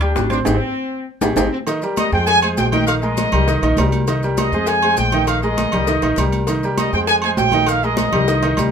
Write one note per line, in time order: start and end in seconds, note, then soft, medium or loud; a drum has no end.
0.00 0.13 D2 loud
0.00 0.26 G3 medium
0.00 0.13 D4 medium
0.00 0.26 G4 medium
0.00 0.26 G5 medium
0.00 high conga soft
0.00 high timbale medium
0.00 maracas soft
0.15 0.44 G#1 medium
0.15 0.29 D4 medium
0.15 high bongo medium
0.15 low bongo medium
0.15 high conga medium
0.15 low timbale medium
0.15 maracas medium
0.30 0.43 C4 medium
0.30 0.38 D4 medium
0.30 0.43 C5 medium
0.30 0.43 C6 medium
0.30 high conga medium
0.30 high timbale medium
0.30 maracas soft
0.45 0.58 G#1 loud
0.45 1.06 C4 medium
0.45 0.55 D#4 loud
0.45 0.56 G4 loud
0.45 0.55 G#4 loud
0.45 high bongo medium
0.45 high conga loud
0.45 high timbale loud
0.45 maracas loud
1.21 1.33 G#1 loud
1.21 1.31 D#4 medium
1.21 1.31 G4 loud
1.21 1.31 G#4 loud
1.21 high bongo loud
1.21 high conga loud
1.21 high timbale medium
1.21 maracas medium
1.35 1.48 G#1 medium
1.35 1.50 C4 medium
1.35 1.46 D#4 loud
1.35 1.47 G4 loud
1.35 1.46 G#4 medium
1.35 high bongo loud
1.35 high conga loud
1.35 high timbale loud
1.35 maracas loud
1.51 1.58 C4 medium
1.67 1.79 D#3 medium
1.67 1.79 D#4 medium
1.67 1.80 D#5 medium
1.67 cowbell loud
1.67 high conga soft
1.67 low agogo medium
1.67 maracas medium
1.82 2.07 G3 medium
1.82 2.07 G4 medium
1.82 2.08 A#4 medium
1.82 high conga soft
1.82 maracas soft
1.97 2.11 D#5 medium
1.97 cowbell medium
1.97 high conga loud
1.97 low agogo loud
1.97 maracas medium
2.12 2.54 F2 loud
2.12 2.37 G#3 medium
2.12 2.37 G#4 medium
2.12 2.38 C5 medium
2.12 2.26 G5 loud
2.12 maracas soft
2.27 2.40 G#5 loud
2.27 cowbell loud
2.27 high conga soft
2.27 low agogo medium
2.27 maracas medium
2.42 2.67 G#3 medium
2.42 2.67 G#4 medium
2.42 2.67 C5 medium
2.42 2.48 G#5 medium
2.42 high conga soft
2.42 low agogo loud
2.42 maracas soft
2.57 3.27 A#1 medium
2.57 2.69 G5 loud
2.57 cowbell medium
2.57 high conga medium
2.57 low timbale medium
2.57 maracas medium
2.70 2.97 D#3 medium
2.70 2.97 D#4 medium
2.70 2.97 D#5 medium
2.70 2.85 G5 loud
2.70 cowbell medium
2.70 high conga medium
2.70 low agogo medium
2.70 maracas soft
2.86 2.93 F5 loud
2.86 cowbell loud
2.86 low agogo loud
2.86 maracas medium
3.01 3.27 G#3 medium
3.01 3.27 G#4 medium
3.01 3.28 A#4 medium
3.01 3.88 D#5 loud
3.01 high conga soft
3.01 maracas soft
3.17 cowbell medium
3.17 high conga loud
3.17 low agogo medium
3.17 maracas medium
3.32 3.61 C2 loud
3.32 3.45 G3 medium
3.32 3.45 G4 medium
3.32 3.45 A#4 medium
3.32 low conga medium
3.32 low agogo loud
3.32 maracas soft
3.47 3.60 D#3 loud
3.47 3.60 D#4 medium
3.47 3.60 D#5 medium
3.47 cowbell loud
3.47 high conga soft
3.47 maracas medium
3.62 3.77 A#1 medium
3.62 3.75 D#3 medium
3.62 3.76 D#4 loud
3.62 3.75 D#5 medium
3.62 cowbell medium
3.62 high conga soft
3.62 low agogo medium
3.62 maracas soft
3.77 4.48 C2 medium
3.77 4.03 G3 medium
3.77 4.03 G4 medium
3.77 4.03 A#4 medium
3.77 cowbell medium
3.77 high conga loud
3.77 low timbale medium
3.77 low agogo loud
3.77 maracas medium
3.92 high conga medium
3.92 low agogo medium
3.92 maracas soft
4.08 4.20 D#3 medium
4.08 4.20 D#4 medium
4.08 4.21 D#5 medium
4.08 cowbell loud
4.08 low agogo medium
4.08 maracas medium
4.23 4.48 G3 medium
4.23 4.48 G4 medium
4.23 4.48 A#4 medium
4.23 high conga soft
4.23 maracas soft
4.37 4.66 D#5 loud
4.37 cowbell medium
4.37 high conga loud
4.37 low agogo loud
4.37 maracas medium
4.52 4.94 F2 loud
4.52 4.78 G#3 medium
4.52 4.78 G#4 medium
4.52 4.78 C5 medium
4.52 maracas soft
4.67 4.98 G#5 loud
4.67 cowbell loud
4.67 high conga soft
4.67 low agogo medium
4.67 maracas medium
4.82 5.08 G#3 medium
4.82 5.08 G#4 medium
4.82 5.08 C5 medium
4.82 high conga soft
4.82 low agogo loud
4.82 maracas soft
4.97 5.68 A#1 medium
4.97 5.26 G5 loud
4.97 cowbell medium
4.97 high conga medium
4.97 maracas medium
5.12 5.38 D#3 medium
5.12 5.38 D#4 medium
5.12 5.38 D#5 medium
5.12 cowbell medium
5.12 high conga medium
5.12 low agogo medium
5.12 maracas soft
5.27 5.41 F5 loud
5.27 cowbell loud
5.27 high conga soft
5.27 low agogo loud
5.27 maracas medium
5.42 5.67 G#3 medium
5.42 5.68 G#4 medium
5.42 5.68 A#4 medium
5.42 6.28 D#5 loud
5.42 high conga soft
5.42 maracas soft
5.57 cowbell medium
5.57 high conga loud
5.57 low agogo medium
5.57 maracas medium
5.72 6.01 C2 loud
5.72 5.86 G3 medium
5.72 5.86 G4 medium
5.72 5.86 A#4 medium
5.72 low conga medium
5.72 low agogo loud
5.72 maracas soft
5.87 6.00 D#3 loud
5.87 6.01 D#4 medium
5.87 6.01 D#5 medium
5.87 cowbell loud
5.87 high conga soft
5.87 maracas medium
6.02 6.17 A#1 medium
6.02 6.15 D#3 loud
6.02 6.15 D#4 loud
6.02 6.15 D#5 loud
6.02 cowbell medium
6.02 high conga soft
6.02 low agogo medium
6.02 maracas soft
6.16 6.87 C2 medium
6.16 6.43 G3 medium
6.16 6.43 G4 medium
6.16 6.43 A#4 medium
6.16 cowbell medium
6.16 high conga medium
6.16 low agogo loud
6.16 maracas medium
6.32 high conga medium
6.32 low agogo medium
6.32 maracas soft
6.47 6.60 D#3 medium
6.47 6.61 D#4 medium
6.47 6.61 D#5 medium
6.47 cowbell loud
6.47 high conga soft
6.47 low agogo medium
6.47 maracas medium
6.63 6.88 G3 medium
6.63 6.89 G4 medium
6.63 6.89 A#4 medium
6.63 high conga soft
6.63 maracas soft
6.78 6.92 D#5 medium
6.78 cowbell medium
6.78 high conga loud
6.78 low agogo loud
6.78 maracas medium
6.93 7.35 F2 medium
6.93 7.18 G#3 medium
6.93 7.18 G#4 medium
6.93 7.19 C5 medium
6.93 7.00 G5 loud
6.93 maracas soft
7.07 7.14 G#5 loud
7.07 cowbell loud
7.07 high conga soft
7.07 low agogo medium
7.07 maracas medium
7.22 7.49 G#3 medium
7.22 7.49 G#4 medium
7.22 7.49 C5 medium
7.22 7.30 G#5 loud
7.22 high conga soft
7.22 low agogo loud
7.22 maracas soft
7.37 8.08 A#1 medium
7.37 7.66 G5 loud
7.37 cowbell medium
7.37 high conga medium
7.37 low timbale medium
7.37 maracas medium
7.52 7.78 D#3 medium
7.52 7.78 D#4 loud
7.52 7.78 D#5 loud
7.52 cowbell medium
7.52 high conga medium
7.52 low agogo medium
7.52 maracas soft
7.66 7.83 F5 loud
7.66 cowbell loud
7.66 high conga soft
7.66 low agogo loud
7.66 maracas medium
7.82 8.08 G#3 medium
7.82 8.08 G#4 medium
7.82 8.08 A#4 medium
7.82 8.71 D#5 loud
7.82 high conga soft
7.82 maracas soft
7.97 cowbell medium
7.97 high conga loud
7.97 low agogo medium
7.97 maracas medium
8.12 8.55 C2 loud
8.12 8.25 G3 medium
8.12 8.25 G4 medium
8.12 8.26 A#4 medium
8.12 low conga medium
8.12 low agogo loud
8.12 maracas soft
8.28 8.40 D#3 medium
8.28 8.40 D#4 medium
8.28 8.41 D#5 medium
8.28 cowbell loud
8.28 high conga soft
8.28 maracas medium
8.43 8.55 D#3 loud
8.43 8.55 D#4 loud
8.43 8.56 D#5 loud
8.43 cowbell medium
8.43 high conga soft
8.43 low agogo medium
8.43 maracas soft
8.57 8.71 C2 loud
8.57 8.71 G3 medium
8.57 8.71 G4 medium
8.57 8.71 A#4 medium
8.57 cowbell medium
8.57 high conga medium
8.57 low agogo loud
8.57 maracas medium